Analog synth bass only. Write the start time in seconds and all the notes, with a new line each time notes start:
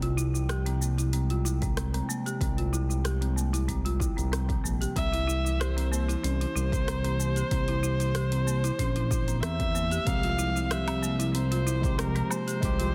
Already playing: C2
2.41 C2
4.17 C2
4.64 A#1
4.96 C2
6.24 C2
6.55 C2
7.51 C2
8.79 A#1
9.42 E2
10.06 C2
12.62 C2